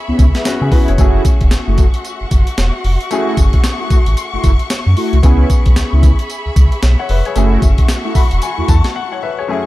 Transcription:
Already playing: B3 C#4 E4 G#4 E5 B5 C#6
0.08 C#2 B3 C#4 E4
0.19 C#2, kick, closed hi-hat, tambourine
0.35 B3 E4, snare, closed hi-hat
0.45 C#4 F#4, snare, closed hi-hat, tambourine
0.61 C#3 C#4 G#4
0.72 B3 C#4 E4 F#4 B4, kick, open hi-hat
0.88 F1 G#4 C#5, closed hi-hat
0.98 F#1 A3 C#4 E4 F#4 G#4 F#5 C#6, kick, closed hi-hat, tambourine
1.25 kick, closed hi-hat, tambourine
1.41 E1, kick, closed hi-hat
1.51 F#1, snare, closed hi-hat, tambourine
1.67 F#1 A3 E4 F#4
1.78 kick, closed hi-hat, tambourine
1.94 closed hi-hat
2.05 closed hi-hat, tambourine
2.21 F#1
2.31 F#1, kick, closed hi-hat, tambourine
2.47 closed hi-hat
2.58 E1, snare, closed hi-hat, tambourine
2.84 F1, open hi-hat
3.01 closed hi-hat
3.11 A3 C#4 E4 F#4 G#4, closed hi-hat, tambourine
3.37 F#1, kick, closed hi-hat, tambourine
3.53 kick, closed hi-hat
3.64 snare, closed hi-hat, tambourine
3.80 A3 E4 F#4
3.90 A1, kick, closed hi-hat, tambourine
4.06 A1, closed hi-hat
4.17 closed hi-hat, tambourine
4.33 F#1 A3 E4 F#4
4.44 F#1, kick, closed hi-hat, tambourine
4.59 closed hi-hat
4.70 snare, closed hi-hat, tambourine
4.86 F#2
4.97 A3 E4 F#4, open hi-hat
5.13 C2, closed hi-hat
5.23 C#2 B3 C#4 E4 G#4 E5 B5, kick, closed hi-hat, tambourine
5.50 kick, closed hi-hat, tambourine
5.66 B1, kick, closed hi-hat
5.76 C#2, snare, closed hi-hat, tambourine
5.92 C#2 B3 C#4 E4
6.03 kick, closed hi-hat, tambourine
6.19 closed hi-hat
6.30 closed hi-hat, tambourine
6.46 C#2
6.56 C#2, kick, closed hi-hat, tambourine
6.72 closed hi-hat
6.82 B1, snare, closed hi-hat, tambourine
6.99 C#5 F#5
7.09 F1 B4 E5, open hi-hat
7.25 G#4 C#5, closed hi-hat
7.35 F#1 A3 C#4 E4 F#4 G#4 F#5 C#6, closed hi-hat, tambourine
7.62 F#1, kick, closed hi-hat, tambourine
7.78 kick, closed hi-hat
7.89 snare, closed hi-hat, tambourine
8.04 A3 E4 F#4
8.15 E1 B5, kick, open hi-hat, tambourine
8.31 E1, closed hi-hat
8.42 G#5, closed hi-hat, tambourine
8.57 E2 A3 E4 F#4
8.68 E2 A5, kick, closed hi-hat, tambourine
8.84 snare, closed hi-hat
8.96 F#5
9.12 C#5 F#5
9.23 B4 E5
9.39 G#4 C#5
9.48 F#2 A3 C#4 E4 F#4 G#4 E5 F#5 C#6

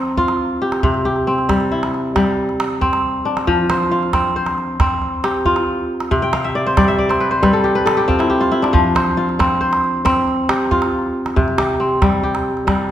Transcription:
Already playing: F3 C4 F4 A4
0.17 F4, calabash thump
0.28 calabash click
0.62 G4
0.72 calabash click
0.83 C3, calabash thump
0.94 calabash click
1.05 G4
1.16 calabash click
1.27 C4, calabash click
1.38 calabash click
1.49 G3, calabash thump, calabash click
1.61 calabash click
1.72 E4
1.83 calabash click
1.94 calabash click
2.16 G3, calabash thump, calabash click
2.49 calabash click
2.60 calabash click
2.81 C4, calabash thump, calabash click
2.93 calabash click
3.25 D4
3.37 calabash click
3.47 F3, calabash thump
3.70 C5, calabash click
3.91 F4
4.03 calabash click
4.13 C4, calabash thump, calabash click
4.36 C5
4.46 calabash click
4.58 calabash click
4.80 C4, calabash thump, calabash click
5.02 calabash click
5.24 G4, calabash click
5.45 F4, calabash thump
5.56 calabash click
6.00 calabash click
6.11 C3, calabash thump
6.22 G5
6.33 F5, calabash click
6.44 E5
6.55 D5
6.66 C5, calabash click
6.77 G3 D5, calabash thump, calabash click
6.88 E5
6.98 D5
7.09 C5, calabash click
7.20 B4, calabash click
7.31 C5
7.43 G3 B4, calabash thump, calabash click
7.53 A4
7.64 G4, calabash click
7.75 B4
7.86 A4, calabash click
7.97 G4
8.08 C4 F4, calabash thump
8.19 E4, calabash click
8.30 G4
8.41 F4
8.52 E4
8.62 D4, calabash click
8.73 F3, calabash thump
8.95 C5, calabash click
9.17 F4
9.29 calabash click
9.39 C4, calabash thump, calabash click
9.61 C5
9.73 calabash click
9.84 calabash click
10.05 C4, calabash thump, calabash click
10.28 calabash click
10.49 G4, calabash click
10.71 F4, calabash thump
10.82 calabash click
11.26 calabash click
11.36 C3, calabash thump
11.48 calabash click
11.58 G4, calabash click
11.80 C4
12.02 G3, calabash thump, calabash click
12.23 G4
12.35 calabash click
12.57 calabash click
12.67 G3, calabash thump, calabash click

